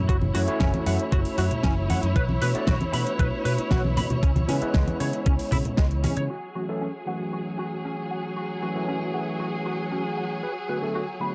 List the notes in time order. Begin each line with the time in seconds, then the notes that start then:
Already playing: A3 C#4 E4 F#4 C#5
0.09 F#1 F#4, kick, closed hi-hat
0.21 high conga, low conga
0.34 F#2 A3 C#4 E4 F#4 C#5, open hi-hat, high bongo
0.47 A3 C#4 E4 F#4 C#5, muted fingered electric bass stroke, closed hi-hat
0.60 F#1 C#4, kick, snare, closed hi-hat
0.74 closed hi-hat, high conga
0.86 F#2 A3 C#4 E4 F#4 E5 F#5, open hi-hat
0.99 closed hi-hat
1.12 F#1 F#4, kick, closed hi-hat
1.25 open hi-hat
1.38 F#2 F#4, open hi-hat, high bongo
1.51 muted fingered electric bass stroke, closed hi-hat, low conga
1.63 F#1 C#4, kick, snare, closed hi-hat, high conga
1.90 F#2 F#5, open hi-hat, high conga
2.03 F#2, closed hi-hat
2.16 B1 B4, kick, closed hi-hat
2.29 high conga
2.41 B2 A3 B3 D4 F#4 B4, open hi-hat
2.54 A3 B3 D4 F#4 D5, muted fingered electric bass stroke, closed hi-hat
2.67 B1 F#4, kick, snare, closed hi-hat
2.81 closed hi-hat, high conga
2.93 B2 A3 B3 D4 F#4 B4 B5, open hi-hat
3.07 closed hi-hat
3.19 B1 B4, kick, closed hi-hat
3.45 B2 B4, open hi-hat
3.58 muted fingered electric bass stroke, closed hi-hat, high bongo
3.71 B1 F#4, kick, snare, closed hi-hat
3.84 high conga
3.97 B2 B5, open hi-hat, high conga
4.10 B2, closed hi-hat, low conga
4.23 C#2 C#4, kick, closed hi-hat
4.36 closed hi-hat, high conga, low conga
4.48 C#3 G#3 B3 C#4 E4 B4, open hi-hat, high bongo
4.61 G#3 B3 C#4 E4 B4, muted fingered electric bass stroke, closed hi-hat
4.74 C#2 G#3, kick, snare, closed hi-hat
4.88 closed hi-hat, high conga
4.99 C#3 G#3 B3 C#4 E4 C#5, open hi-hat
5.13 closed hi-hat
5.26 C#2 C#4, kick, closed hi-hat
5.39 open hi-hat
5.52 C#3 E4, kick, open hi-hat, high bongo, low conga
5.65 muted fingered electric bass stroke, closed hi-hat, low conga
5.77 C#2 G#3, kick, snare, closed hi-hat, high conga
5.91 closed hi-hat
6.04 C#3 C#4, open hi-hat, high conga
6.17 C#3 C#5, closed hi-hat
6.30 F#3 F#4 G#4
6.55 E3 F#3 A3 C#4 F#4
6.68 E3 F#3 A3 C#4 A4
6.81 C#4
7.06 E3 F#3 A3 C#4 F#4 F#5
7.33 F#4
7.59 F#4
7.85 C#4
8.11 F#5
8.37 F#4
8.62 E3 F#3 A3 C#4 F#4
8.75 E3 F#3 A3 C#4 F#4
8.88 C#4
9.13 E3 F#3 A3 C#4 G#4 F#5
9.40 F#4
9.66 F#4
9.92 C#4
10.18 F#5
10.43 B4
10.69 D3 F#3 A3 B3 F#4 B4
10.82 D3 F#3 A3 B3 A4
10.95 F#4
11.20 D3 F#3 A3 B3 F#4 B5